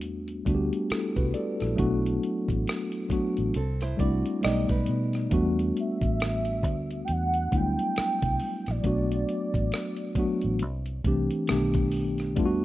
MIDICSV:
0, 0, Header, 1, 7, 480
1, 0, Start_track
1, 0, Key_signature, 1, "minor"
1, 0, Tempo, 882353
1, 970, Time_signature, 4, 2, 24, 8
1, 6880, End_track
2, 0, Start_track
2, 0, Title_t, "Soft synth lead"
2, 0, Program_c, 0, 80
2, 3154, Note_on_c, 0, 76, 94
2, 3810, Note_off_c, 0, 76, 0
2, 3834, Note_on_c, 0, 79, 67
2, 3875, Note_on_c, 0, 78, 107
2, 3883, Note_off_c, 0, 79, 0
2, 4115, Note_on_c, 0, 79, 103
2, 4123, Note_off_c, 0, 78, 0
2, 4736, Note_on_c, 0, 74, 92
2, 4744, Note_off_c, 0, 79, 0
2, 6164, Note_off_c, 0, 74, 0
2, 6880, End_track
3, 0, Start_track
3, 0, Title_t, "Nylon-string guitar"
3, 0, Program_c, 1, 24
3, 1937, Note_on_c, 1, 60, 55
3, 1938, Note_on_c, 1, 69, 65
3, 2069, Note_off_c, 1, 60, 0
3, 2069, Note_off_c, 1, 69, 0
3, 2077, Note_on_c, 1, 72, 70
3, 2082, Note_on_c, 1, 64, 57
3, 2168, Note_off_c, 1, 72, 0
3, 2170, Note_off_c, 1, 64, 0
3, 2175, Note_on_c, 1, 74, 73
3, 2178, Note_on_c, 1, 66, 60
3, 2401, Note_off_c, 1, 74, 0
3, 2402, Note_off_c, 1, 66, 0
3, 2414, Note_on_c, 1, 75, 67
3, 2418, Note_on_c, 1, 67, 59
3, 2548, Note_off_c, 1, 75, 0
3, 2550, Note_off_c, 1, 67, 0
3, 2556, Note_on_c, 1, 71, 62
3, 2559, Note_on_c, 1, 63, 56
3, 2875, Note_off_c, 1, 71, 0
3, 2877, Note_off_c, 1, 63, 0
3, 6880, End_track
4, 0, Start_track
4, 0, Title_t, "Tine electric piano"
4, 0, Program_c, 2, 4
4, 0, Control_c, 2, 64, 127
4, 0, Note_on_c, 2, 55, 92
4, 0, Note_on_c, 2, 57, 85
4, 0, Note_on_c, 2, 59, 81
4, 0, Note_on_c, 2, 62, 79
4, 0, Note_on_c, 2, 66, 99
4, 245, Note_off_c, 2, 55, 0
4, 245, Note_on_c, 2, 55, 76
4, 248, Note_off_c, 2, 57, 0
4, 248, Note_on_c, 2, 57, 66
4, 253, Note_off_c, 2, 59, 0
4, 253, Note_on_c, 2, 59, 63
4, 259, Note_off_c, 2, 62, 0
4, 259, Note_on_c, 2, 62, 70
4, 264, Note_off_c, 2, 66, 0
4, 264, Note_on_c, 2, 66, 64
4, 298, Note_on_c, 2, 67, 77
4, 299, Note_off_c, 2, 66, 0
4, 498, Note_on_c, 2, 69, 57
4, 501, Note_on_c, 2, 64, 47
4, 514, Note_off_c, 2, 67, 0
4, 630, Note_off_c, 2, 69, 0
4, 631, Note_off_c, 2, 64, 0
4, 634, Note_on_c, 2, 71, 66
4, 637, Note_on_c, 2, 66, 50
4, 726, Note_off_c, 2, 71, 0
4, 727, Note_off_c, 2, 66, 0
4, 729, Note_on_c, 2, 74, 60
4, 733, Note_on_c, 2, 69, 55
4, 864, Note_off_c, 2, 69, 0
4, 865, Note_off_c, 2, 74, 0
4, 871, Note_on_c, 2, 69, 56
4, 875, Note_off_c, 2, 55, 0
4, 876, Note_on_c, 2, 64, 49
4, 877, Note_off_c, 2, 57, 0
4, 879, Note_off_c, 2, 59, 0
4, 882, Note_off_c, 2, 62, 0
4, 954, Note_on_c, 2, 54, 87
4, 959, Note_on_c, 2, 57, 81
4, 964, Note_on_c, 2, 59, 80
4, 969, Note_on_c, 2, 62, 81
4, 975, Note_on_c, 2, 66, 100
4, 979, Control_c, 2, 64, 0
4, 1059, Control_c, 2, 64, 127
4, 1100, Note_off_c, 2, 69, 0
4, 1103, Note_off_c, 2, 64, 0
4, 1590, Note_off_c, 2, 54, 0
4, 1592, Note_off_c, 2, 57, 0
4, 1595, Note_off_c, 2, 59, 0
4, 1597, Note_off_c, 2, 62, 0
4, 1600, Note_off_c, 2, 66, 0
4, 1681, Note_on_c, 2, 54, 73
4, 1686, Note_on_c, 2, 57, 64
4, 1689, Note_on_c, 2, 59, 61
4, 1695, Note_on_c, 2, 62, 67
4, 1699, Note_on_c, 2, 66, 78
4, 1926, Note_off_c, 2, 54, 0
4, 1928, Note_off_c, 2, 57, 0
4, 1930, Note_off_c, 2, 59, 0
4, 1933, Note_off_c, 2, 62, 0
4, 1935, Note_off_c, 2, 66, 0
4, 1937, Control_c, 2, 64, 0
4, 2030, Control_c, 2, 64, 127
4, 2160, Note_on_c, 2, 55, 77
4, 2166, Note_on_c, 2, 57, 68
4, 2170, Note_on_c, 2, 60, 66
4, 2176, Note_on_c, 2, 62, 66
4, 2177, Note_on_c, 2, 64, 78
4, 2392, Note_off_c, 2, 55, 0
4, 2398, Note_off_c, 2, 57, 0
4, 2399, Note_on_c, 2, 55, 77
4, 2404, Note_on_c, 2, 57, 69
4, 2409, Note_on_c, 2, 59, 72
4, 2410, Note_off_c, 2, 60, 0
4, 2413, Note_off_c, 2, 62, 0
4, 2414, Note_off_c, 2, 64, 0
4, 2414, Note_on_c, 2, 74, 74
4, 2418, Control_c, 2, 64, 0
4, 2418, Note_on_c, 2, 63, 85
4, 2509, Control_c, 2, 64, 127
4, 2823, Note_off_c, 2, 55, 0
4, 2826, Note_off_c, 2, 57, 0
4, 2828, Note_off_c, 2, 59, 0
4, 2830, Note_off_c, 2, 74, 0
4, 2832, Note_off_c, 2, 63, 0
4, 2882, Note_on_c, 2, 54, 73
4, 2886, Note_on_c, 2, 57, 80
4, 2892, Note_on_c, 2, 59, 83
4, 2896, Control_c, 2, 64, 0
4, 2898, Note_on_c, 2, 62, 82
4, 2903, Note_on_c, 2, 66, 99
4, 2918, Note_on_c, 2, 55, 83
4, 2928, Note_off_c, 2, 54, 0
4, 2998, Control_c, 2, 64, 127
4, 3713, Note_off_c, 2, 57, 0
4, 3716, Note_off_c, 2, 59, 0
4, 3719, Note_off_c, 2, 62, 0
4, 3721, Note_off_c, 2, 66, 0
4, 3729, Note_off_c, 2, 55, 0
4, 4086, Note_on_c, 2, 54, 51
4, 4089, Note_on_c, 2, 57, 57
4, 4093, Note_on_c, 2, 59, 58
4, 4099, Note_on_c, 2, 62, 56
4, 4104, Note_on_c, 2, 64, 64
4, 4119, Note_on_c, 2, 55, 63
4, 4130, Note_off_c, 2, 54, 0
4, 4717, Note_off_c, 2, 57, 0
4, 4719, Note_off_c, 2, 59, 0
4, 4722, Note_off_c, 2, 62, 0
4, 4725, Note_off_c, 2, 64, 0
4, 4732, Note_off_c, 2, 55, 0
4, 4803, Note_on_c, 2, 54, 71
4, 4807, Note_on_c, 2, 57, 69
4, 4811, Note_on_c, 2, 59, 68
4, 4817, Control_c, 2, 64, 0
4, 4817, Note_on_c, 2, 62, 68
4, 4822, Note_on_c, 2, 66, 84
4, 4919, Control_c, 2, 64, 127
4, 5434, Note_off_c, 2, 54, 0
4, 5436, Note_off_c, 2, 57, 0
4, 5438, Note_off_c, 2, 59, 0
4, 5441, Note_off_c, 2, 62, 0
4, 5444, Note_off_c, 2, 66, 0
4, 5526, Note_on_c, 2, 54, 79
4, 5533, Note_on_c, 2, 57, 66
4, 5536, Note_on_c, 2, 59, 68
4, 5541, Note_on_c, 2, 62, 66
4, 5545, Note_on_c, 2, 66, 77
4, 5768, Note_off_c, 2, 54, 0
4, 5772, Note_off_c, 2, 57, 0
4, 5773, Note_off_c, 2, 59, 0
4, 5776, Note_off_c, 2, 62, 0
4, 5778, Note_off_c, 2, 66, 0
4, 5778, Control_c, 2, 64, 0
4, 5863, Control_c, 2, 64, 127
4, 6008, Note_on_c, 2, 52, 74
4, 6011, Note_on_c, 2, 57, 74
4, 6015, Note_on_c, 2, 60, 68
4, 6022, Note_on_c, 2, 62, 73
4, 6026, Note_on_c, 2, 67, 85
4, 6244, Note_off_c, 2, 57, 0
4, 6246, Note_on_c, 2, 50, 68
4, 6249, Note_off_c, 2, 52, 0
4, 6250, Note_on_c, 2, 57, 72
4, 6252, Note_off_c, 2, 62, 0
4, 6253, Note_off_c, 2, 60, 0
4, 6254, Note_on_c, 2, 59, 79
4, 6258, Note_off_c, 2, 67, 0
4, 6258, Note_on_c, 2, 62, 76
4, 6259, Control_c, 2, 64, 0
4, 6264, Note_on_c, 2, 67, 88
4, 6279, Note_on_c, 2, 51, 80
4, 6290, Note_off_c, 2, 50, 0
4, 6355, Control_c, 2, 64, 127
4, 6669, Note_off_c, 2, 57, 0
4, 6670, Note_off_c, 2, 59, 0
4, 6673, Note_off_c, 2, 62, 0
4, 6675, Note_off_c, 2, 67, 0
4, 6683, Note_off_c, 2, 51, 0
4, 6722, Note_on_c, 2, 55, 90
4, 6726, Note_on_c, 2, 57, 79
4, 6731, Note_on_c, 2, 59, 85
4, 6737, Control_c, 2, 64, 0
4, 6737, Note_on_c, 2, 62, 86
4, 6742, Note_on_c, 2, 65, 82
4, 6776, Note_on_c, 2, 66, 107
4, 6778, Note_off_c, 2, 65, 0
4, 6838, Control_c, 2, 64, 127
4, 6880, Note_off_c, 2, 55, 0
4, 6880, Note_off_c, 2, 57, 0
4, 6880, Note_off_c, 2, 59, 0
4, 6880, Note_off_c, 2, 62, 0
4, 6880, Note_off_c, 2, 66, 0
4, 6880, End_track
5, 0, Start_track
5, 0, Title_t, "Fingered electric bass"
5, 0, Program_c, 3, 33
5, 17, Note_on_c, 3, 40, 81
5, 225, Note_off_c, 3, 40, 0
5, 254, Note_on_c, 3, 38, 68
5, 377, Note_off_c, 3, 38, 0
5, 636, Note_on_c, 3, 36, 76
5, 720, Note_off_c, 3, 36, 0
5, 879, Note_on_c, 3, 34, 78
5, 962, Note_off_c, 3, 34, 0
5, 974, Note_on_c, 3, 35, 84
5, 1183, Note_off_c, 3, 35, 0
5, 1355, Note_on_c, 3, 33, 74
5, 1439, Note_off_c, 3, 33, 0
5, 1841, Note_on_c, 3, 33, 76
5, 1923, Note_off_c, 3, 33, 0
5, 1936, Note_on_c, 3, 36, 89
5, 2144, Note_off_c, 3, 36, 0
5, 2173, Note_on_c, 3, 36, 73
5, 2297, Note_off_c, 3, 36, 0
5, 2418, Note_on_c, 3, 35, 83
5, 2540, Note_off_c, 3, 35, 0
5, 2554, Note_on_c, 3, 35, 72
5, 2639, Note_off_c, 3, 35, 0
5, 2658, Note_on_c, 3, 47, 82
5, 2866, Note_off_c, 3, 47, 0
5, 2894, Note_on_c, 3, 40, 91
5, 3103, Note_off_c, 3, 40, 0
5, 3275, Note_on_c, 3, 33, 77
5, 3609, Note_off_c, 3, 33, 0
5, 3609, Note_on_c, 3, 38, 78
5, 3821, Note_off_c, 3, 38, 0
5, 3857, Note_on_c, 3, 40, 85
5, 4065, Note_off_c, 3, 40, 0
5, 4095, Note_on_c, 3, 38, 77
5, 4218, Note_off_c, 3, 38, 0
5, 4477, Note_on_c, 3, 36, 68
5, 4561, Note_off_c, 3, 36, 0
5, 4721, Note_on_c, 3, 34, 73
5, 4803, Note_off_c, 3, 34, 0
5, 4812, Note_on_c, 3, 35, 88
5, 5022, Note_off_c, 3, 35, 0
5, 5193, Note_on_c, 3, 33, 74
5, 5279, Note_off_c, 3, 33, 0
5, 5682, Note_on_c, 3, 33, 78
5, 5778, Note_off_c, 3, 33, 0
5, 5778, Note_on_c, 3, 36, 101
5, 5985, Note_off_c, 3, 36, 0
5, 6010, Note_on_c, 3, 36, 78
5, 6135, Note_off_c, 3, 36, 0
5, 6258, Note_on_c, 3, 35, 76
5, 6731, Note_off_c, 3, 35, 0
5, 6731, Note_on_c, 3, 40, 98
5, 6880, Note_off_c, 3, 40, 0
5, 6880, End_track
6, 0, Start_track
6, 0, Title_t, "Muted fingered electric bass strokes"
6, 496, Note_on_c, 9, 29, 36
6, 550, Note_off_c, 9, 29, 0
6, 1688, Note_on_c, 9, 29, 40
6, 1742, Note_off_c, 9, 29, 0
6, 4341, Note_on_c, 9, 29, 38
6, 4396, Note_off_c, 9, 29, 0
6, 5526, Note_on_c, 9, 29, 43
6, 5580, Note_off_c, 9, 29, 0
6, 6880, End_track
7, 0, Start_track
7, 0, Title_t, "Drums"
7, 7, Note_on_c, 9, 42, 75
7, 62, Note_off_c, 9, 42, 0
7, 151, Note_on_c, 9, 42, 40
7, 206, Note_off_c, 9, 42, 0
7, 251, Note_on_c, 9, 36, 83
7, 255, Note_on_c, 9, 42, 60
7, 306, Note_off_c, 9, 36, 0
7, 310, Note_off_c, 9, 42, 0
7, 396, Note_on_c, 9, 42, 43
7, 451, Note_off_c, 9, 42, 0
7, 491, Note_on_c, 9, 42, 76
7, 499, Note_on_c, 9, 37, 98
7, 545, Note_off_c, 9, 42, 0
7, 554, Note_off_c, 9, 37, 0
7, 633, Note_on_c, 9, 42, 41
7, 634, Note_on_c, 9, 36, 76
7, 687, Note_off_c, 9, 42, 0
7, 688, Note_off_c, 9, 36, 0
7, 729, Note_on_c, 9, 42, 54
7, 783, Note_off_c, 9, 42, 0
7, 873, Note_on_c, 9, 42, 38
7, 882, Note_on_c, 9, 37, 30
7, 927, Note_off_c, 9, 42, 0
7, 936, Note_off_c, 9, 37, 0
7, 970, Note_on_c, 9, 42, 68
7, 971, Note_on_c, 9, 36, 91
7, 1024, Note_off_c, 9, 42, 0
7, 1026, Note_off_c, 9, 36, 0
7, 1122, Note_on_c, 9, 42, 48
7, 1177, Note_off_c, 9, 42, 0
7, 1215, Note_on_c, 9, 42, 50
7, 1270, Note_off_c, 9, 42, 0
7, 1352, Note_on_c, 9, 36, 79
7, 1359, Note_on_c, 9, 42, 38
7, 1406, Note_off_c, 9, 36, 0
7, 1414, Note_off_c, 9, 42, 0
7, 1455, Note_on_c, 9, 42, 58
7, 1465, Note_on_c, 9, 37, 102
7, 1509, Note_off_c, 9, 42, 0
7, 1519, Note_off_c, 9, 37, 0
7, 1588, Note_on_c, 9, 42, 43
7, 1642, Note_off_c, 9, 42, 0
7, 1686, Note_on_c, 9, 36, 82
7, 1693, Note_on_c, 9, 42, 67
7, 1741, Note_off_c, 9, 36, 0
7, 1748, Note_off_c, 9, 42, 0
7, 1833, Note_on_c, 9, 42, 39
7, 1887, Note_off_c, 9, 42, 0
7, 1927, Note_on_c, 9, 42, 73
7, 1981, Note_off_c, 9, 42, 0
7, 2071, Note_on_c, 9, 42, 42
7, 2081, Note_on_c, 9, 37, 32
7, 2125, Note_off_c, 9, 42, 0
7, 2135, Note_off_c, 9, 37, 0
7, 2171, Note_on_c, 9, 36, 79
7, 2174, Note_on_c, 9, 42, 56
7, 2225, Note_off_c, 9, 36, 0
7, 2229, Note_off_c, 9, 42, 0
7, 2315, Note_on_c, 9, 42, 44
7, 2370, Note_off_c, 9, 42, 0
7, 2410, Note_on_c, 9, 42, 74
7, 2418, Note_on_c, 9, 37, 101
7, 2464, Note_off_c, 9, 42, 0
7, 2473, Note_off_c, 9, 37, 0
7, 2552, Note_on_c, 9, 42, 43
7, 2553, Note_on_c, 9, 36, 74
7, 2606, Note_off_c, 9, 42, 0
7, 2608, Note_off_c, 9, 36, 0
7, 2646, Note_on_c, 9, 42, 55
7, 2700, Note_off_c, 9, 42, 0
7, 2792, Note_on_c, 9, 42, 37
7, 2802, Note_on_c, 9, 37, 30
7, 2847, Note_off_c, 9, 42, 0
7, 2856, Note_off_c, 9, 37, 0
7, 2890, Note_on_c, 9, 42, 66
7, 2891, Note_on_c, 9, 36, 92
7, 2944, Note_off_c, 9, 42, 0
7, 2946, Note_off_c, 9, 36, 0
7, 3042, Note_on_c, 9, 42, 43
7, 3096, Note_off_c, 9, 42, 0
7, 3137, Note_on_c, 9, 42, 52
7, 3192, Note_off_c, 9, 42, 0
7, 3272, Note_on_c, 9, 36, 86
7, 3279, Note_on_c, 9, 42, 39
7, 3327, Note_off_c, 9, 36, 0
7, 3334, Note_off_c, 9, 42, 0
7, 3374, Note_on_c, 9, 42, 63
7, 3384, Note_on_c, 9, 37, 103
7, 3428, Note_off_c, 9, 42, 0
7, 3438, Note_off_c, 9, 37, 0
7, 3508, Note_on_c, 9, 42, 41
7, 3563, Note_off_c, 9, 42, 0
7, 3608, Note_on_c, 9, 36, 78
7, 3615, Note_on_c, 9, 42, 66
7, 3662, Note_off_c, 9, 36, 0
7, 3669, Note_off_c, 9, 42, 0
7, 3757, Note_on_c, 9, 42, 40
7, 3811, Note_off_c, 9, 42, 0
7, 3850, Note_on_c, 9, 42, 77
7, 3905, Note_off_c, 9, 42, 0
7, 3992, Note_on_c, 9, 42, 38
7, 4046, Note_off_c, 9, 42, 0
7, 4092, Note_on_c, 9, 36, 80
7, 4096, Note_on_c, 9, 42, 56
7, 4146, Note_off_c, 9, 36, 0
7, 4150, Note_off_c, 9, 42, 0
7, 4238, Note_on_c, 9, 42, 46
7, 4292, Note_off_c, 9, 42, 0
7, 4331, Note_on_c, 9, 42, 73
7, 4340, Note_on_c, 9, 37, 107
7, 4386, Note_off_c, 9, 42, 0
7, 4394, Note_off_c, 9, 37, 0
7, 4474, Note_on_c, 9, 36, 85
7, 4474, Note_on_c, 9, 42, 43
7, 4528, Note_off_c, 9, 42, 0
7, 4529, Note_off_c, 9, 36, 0
7, 4567, Note_on_c, 9, 46, 40
7, 4622, Note_off_c, 9, 46, 0
7, 4713, Note_on_c, 9, 42, 38
7, 4723, Note_on_c, 9, 37, 30
7, 4768, Note_off_c, 9, 42, 0
7, 4777, Note_off_c, 9, 37, 0
7, 4808, Note_on_c, 9, 42, 67
7, 4811, Note_on_c, 9, 36, 97
7, 4862, Note_off_c, 9, 42, 0
7, 4865, Note_off_c, 9, 36, 0
7, 4959, Note_on_c, 9, 42, 46
7, 5014, Note_off_c, 9, 42, 0
7, 5052, Note_on_c, 9, 42, 51
7, 5107, Note_off_c, 9, 42, 0
7, 5190, Note_on_c, 9, 36, 79
7, 5195, Note_on_c, 9, 42, 38
7, 5245, Note_off_c, 9, 36, 0
7, 5249, Note_off_c, 9, 42, 0
7, 5287, Note_on_c, 9, 42, 60
7, 5297, Note_on_c, 9, 37, 104
7, 5342, Note_off_c, 9, 42, 0
7, 5352, Note_off_c, 9, 37, 0
7, 5421, Note_on_c, 9, 42, 41
7, 5476, Note_off_c, 9, 42, 0
7, 5523, Note_on_c, 9, 36, 80
7, 5526, Note_on_c, 9, 42, 61
7, 5578, Note_off_c, 9, 36, 0
7, 5580, Note_off_c, 9, 42, 0
7, 5666, Note_on_c, 9, 42, 40
7, 5720, Note_off_c, 9, 42, 0
7, 5762, Note_on_c, 9, 42, 73
7, 5817, Note_off_c, 9, 42, 0
7, 5906, Note_on_c, 9, 42, 40
7, 5961, Note_off_c, 9, 42, 0
7, 6008, Note_on_c, 9, 36, 78
7, 6009, Note_on_c, 9, 42, 57
7, 6063, Note_off_c, 9, 36, 0
7, 6063, Note_off_c, 9, 42, 0
7, 6150, Note_on_c, 9, 42, 45
7, 6205, Note_off_c, 9, 42, 0
7, 6242, Note_on_c, 9, 42, 75
7, 6251, Note_on_c, 9, 37, 103
7, 6296, Note_off_c, 9, 42, 0
7, 6305, Note_off_c, 9, 37, 0
7, 6385, Note_on_c, 9, 42, 44
7, 6390, Note_on_c, 9, 36, 82
7, 6440, Note_off_c, 9, 42, 0
7, 6445, Note_off_c, 9, 36, 0
7, 6482, Note_on_c, 9, 46, 42
7, 6536, Note_off_c, 9, 46, 0
7, 6626, Note_on_c, 9, 42, 37
7, 6636, Note_on_c, 9, 37, 32
7, 6681, Note_off_c, 9, 42, 0
7, 6690, Note_off_c, 9, 37, 0
7, 6726, Note_on_c, 9, 42, 65
7, 6728, Note_on_c, 9, 36, 98
7, 6780, Note_off_c, 9, 42, 0
7, 6783, Note_off_c, 9, 36, 0
7, 6880, End_track
0, 0, End_of_file